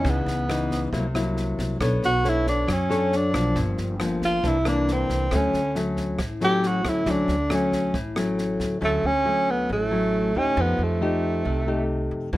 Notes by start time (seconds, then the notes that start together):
Already playing: E3 B3 C#4 D#4
0.05 C#2 C#3, kick, snare
0.10 B3
0.26 C#2, snare
0.49 E3 B3 D#4, cross-stick, snare
0.71 kick, snare
0.93 C2 C3 F#3 A#3 E4, kick, snare
1.15 F#3 A#3 E4, cross-stick, snare
1.37 snare
1.59 C2, kick, snare
1.81 B1 B3 D4 A4 C#5, kick, cross-stick, snare
2.02 B1 F#4, snare
2.24 D4 A4 C#5, snare
2.29 E4
2.46 D4, kick, snare
2.67 F#2 F#3, kick, cross-stick, snare
2.73 C#4
2.90 D4 A4 C#5, snare
3.12 snare
3.17 D4
3.34 B1 F3 A#3 D4, kick, cross-stick, snare
3.55 G1 G2, kick, snare
3.78 G1, snare
4.00 F3 A#3 D4, cross-stick, snare
4.22 F4, kick, snare
4.43 C2 C3 E3 A#3 D4, kick, snare
4.48 E4
4.65 E3 A#3 D4, cross-stick, snare
4.88 snare
4.92 C4
5.10 C2, kick, snare
5.31 D2 D3 F#3 A3 C#4, kick, cross-stick, snare
5.36 C#4
5.53 D2, snare
5.75 F#3 A3 C#4, snare
5.97 kick, snare
6.19 A1 A2, kick, cross-stick, snare
6.41 F#3 A3 C#4 G4, snare
6.63 snare
6.67 F#4
6.84 D2 F#3 A3 C#4, kick, cross-stick, snare
6.89 E4
7.06 D2 D3 F#3 A3 C#4, kick, snare
7.11 D4
7.28 D2, snare
7.50 F#3 A3 C#4, cross-stick, snare
7.55 C#4
7.72 kick, snare
7.94 A1 A2, kick, snare
8.16 F#3 A3 C#4, cross-stick, snare
8.38 snare
8.60 D2, kick, snare
8.81 D2 D3 F#3 A3 C#4
9.03 D2 C#4
9.25 F#3 A3 C#4
9.50 B3
9.69 A1 A2 A3
9.91 F#3 A3 C#4
10.35 D2 A3 C#4 D#4 G4
10.57 F2 F3 B3
10.78 F2
10.83 A3
11.01 A3 D#4 G4
11.45 C2 C3
11.67 A3 D#4 G4
12.11 F2
12.33 E2 E3 G3 D4 F#4